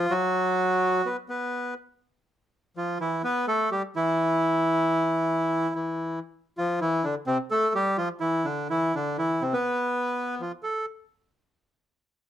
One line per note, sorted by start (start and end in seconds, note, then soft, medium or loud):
0.00 0.13 F4 loud
0.11 1.01 F#3 loud
0.11 1.08 F#4 loud
1.05 1.16 B3 medium
1.05 1.17 B4 medium
1.29 1.74 B3 medium
1.29 1.74 B4 medium
2.76 2.98 F3 medium
2.76 2.98 F4 medium
3.00 3.22 E3 medium
3.00 3.22 E4 medium
3.24 3.46 B3 medium
3.24 3.46 B4 loud
3.48 3.70 A3 medium
3.48 3.70 A4 loud
3.72 3.82 G3 medium
3.72 3.82 G4 medium
3.96 5.72 E3 medium
3.96 5.74 E4 loud
5.75 6.20 E3 medium
5.75 6.19 E4 medium
6.58 6.80 F3 medium
6.58 6.79 F4 loud
6.81 7.03 E3 medium
6.81 7.05 E4 loud
7.04 7.16 D3 medium
7.04 7.15 D4 medium
7.27 7.38 C3 medium
7.27 7.38 C4 loud
7.51 7.73 A3 medium
7.51 7.73 A4 loud
7.75 7.97 G3 medium
7.75 7.97 G4 loud
7.98 8.09 F3 medium
7.98 8.09 F4 loud
8.20 8.44 E3 medium
8.20 8.46 E4 loud
8.45 8.68 D3 medium
8.45 8.68 D4 medium
8.70 8.93 E3 medium
8.70 8.95 E4 loud
8.95 9.17 D3 medium
8.95 9.17 D4 medium
9.18 9.40 E3 medium
9.18 9.43 E4 loud
9.42 9.53 C3 medium
9.42 9.53 C4 medium
9.53 10.42 B3 loud
9.53 10.35 B4 medium
10.40 10.51 F3 medium
10.40 10.52 F4 medium
10.63 10.86 A4 medium